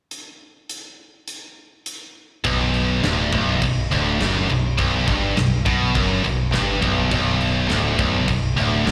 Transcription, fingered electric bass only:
2.45 B0
3.04 D1
3.33 B0
3.62 B0
3.91 D1
4.22 F#1
4.51 B0
4.79 B0
5.08 G1
5.39 B0
5.67 B1
5.96 F#1
6.25 B0
6.54 G1
6.83 B0
7.12 B0
7.70 D1
7.99 B0
8.29 B0
8.59 D1
8.87 F#1

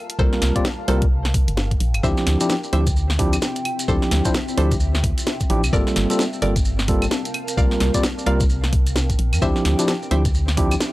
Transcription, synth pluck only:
0.19 A4 C5
0.88 A4 C5
2.03 C5 E5
2.73 C5 E5
3.88 A4 C5
4.58 A4 C5
5.73 A#4 D5
6.42 A#4 D5
7.58 D5 F5
8.26 D5 F5
9.42 C5 E5
10.11 C5 E5

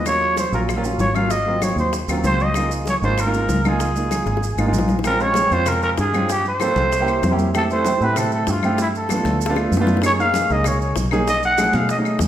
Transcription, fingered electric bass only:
Already playing: D#2
0.52 A#1
0.98 G#1
1.76 D#2
2.08 D#2
2.24 C#2
3.02 G#1
3.49 C#2
4.26 G#1
4.57 G#1
4.73 A#1
5.51 F2
5.99 G2
6.76 C2
7.23 F2
8.01 A2
8.48 G2
9.25 D2
9.72 F#2
10.50 C#2
10.97 B1
11.74 B2
12.20 E2

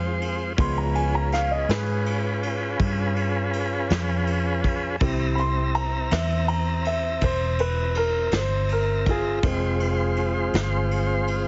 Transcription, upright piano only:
0.58 F3 G#3 B3 C6
0.78 A#5
0.95 G#5
1.15 A#5
1.33 F5
1.51 D#5
1.69 G#4 B4
5.01 C4 E4 G4
5.35 B5
5.39 C6
5.75 A#5
6.12 E5
6.48 A#5
6.87 E5
7.24 C5
7.60 B4
7.97 A#4
8.35 C5
8.72 A#4
9.09 F4 G#4
9.44 F3 G#3 C4

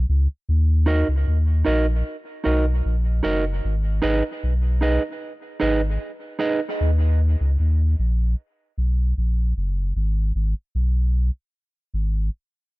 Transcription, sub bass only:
0.09 C#2
0.49 D#2
1.08 C#2
1.27 D#2
1.67 A#1
2.46 B1
2.85 A#1
3.25 F#1
3.65 G#1
4.04 G#1
4.43 B1
5.62 G#1
6.81 D#2
7.41 C#2
7.59 D#2
7.99 A#1
8.78 B1
9.18 A#1
9.57 F#1
9.96 G#1
10.35 G#1
10.75 B1
11.94 G#1

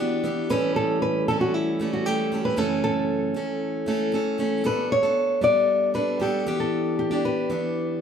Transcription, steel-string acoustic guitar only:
Already playing: E3
0.00 B3 D4 G4
0.24 E3 B3 D4 G4
0.50 A2 E3 G3 A3 C#4 A4
1.28 G3 A3 C#4 A4
1.80 G3 A3 C#4 A4
2.06 G3 A3 C#4 A4
2.32 G3 A3 C#4 A4
2.57 F#2 C#3 E3 A3 C#4 A4
3.34 E3 A3 C#4 A4
3.86 E3 A3 C#4 A4
4.12 E3 A3 C#4 A4
4.38 E3 A3 C#4 A4
4.64 G3 B3 D4 A4
5.03 B3 D4 A4
5.41 G3 B3 D4 A4
5.94 G3 B3 D4 A4
6.20 G3 B3 D4 A4
6.46 E3 B3 D4 G4
7.11 B3 D4 G4
7.50 E3 B3 D4 G4

